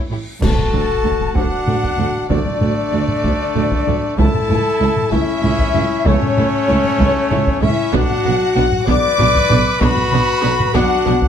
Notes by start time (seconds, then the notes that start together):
Already playing: reverse cymbal
0.10 A1 A2 E4 G4 C#5
0.42 D2 A3 F#4 A4 A5, concert bass drum, taiko, crash, sub drop
0.58 taiko low-mid
0.73 D2 A3 F#4, taiko low-mid
1.04 D2 A3 F#4
1.21 taiko low-mid
1.35 D2 A3 D4 F#4 F#5, taiko
1.67 D2 A3 F#4, taiko low-mid
1.83 taiko
1.97 D2 A3 F#4, taiko low-mid
2.29 D2 A3 D4 F#4 D5, taiko
2.46 taiko low-mid
2.61 D2 A3 F#4, taiko low-mid
2.92 D2 A3 F#4
3.08 taiko low-mid
3.23 D2 A3 F#4, taiko
3.55 D2 A3 F#4, taiko low-mid
3.71 taiko
3.86 D2 A3 F#4, taiko low-mid
4.17 C#2 A3 E4 A4 A5, taiko
4.35 taiko low-mid
4.49 C#2 A3 E4, taiko low-mid
4.80 C#2 A3 E4
4.97 taiko low-mid
5.11 C#2 A3 C#4 E4 E5, taiko
5.42 C#2 A3 E4, taiko low-mid
5.59 taiko
5.74 C#2 A3 E4, taiko low-mid
6.05 C#2 A3 C#4 E4 C#5, taiko
6.22 taiko low-mid
6.37 C#2 A3 E4, taiko low-mid
6.68 C#2 A3 E4
6.84 taiko low-mid
6.99 C#2 A3 E4, taiko
7.30 C#2 A3 E4, taiko low-mid
7.47 taiko
7.61 C#2 A3 C#4 E4 E5, taiko low-mid
7.92 B1 B2 B3 D4 F#4 F#5, taiko
8.10 taiko low-mid
8.24 B1 B2 B3 D4, taiko low-mid
8.56 B1 B2 B3 D4
8.72 taiko low-mid
8.87 B1 B2 B3 D4 B4 D5 D6, taiko
9.18 B1 B2 B3 D4, taiko low-mid
9.35 taiko
9.50 B1 B2 B3 D4, taiko low-mid
9.81 B1 B2 B3 D4 F#4 B4 B5, taiko
9.97 taiko low-mid
10.12 B1 B2 B3 D4, taiko low-mid
10.42 B1 B2 B3 D4
10.60 taiko low-mid
10.74 B1 B2 B3 D4 F#4 F#5, taiko
11.06 B1 B2 B3 D4, taiko low-mid
11.22 taiko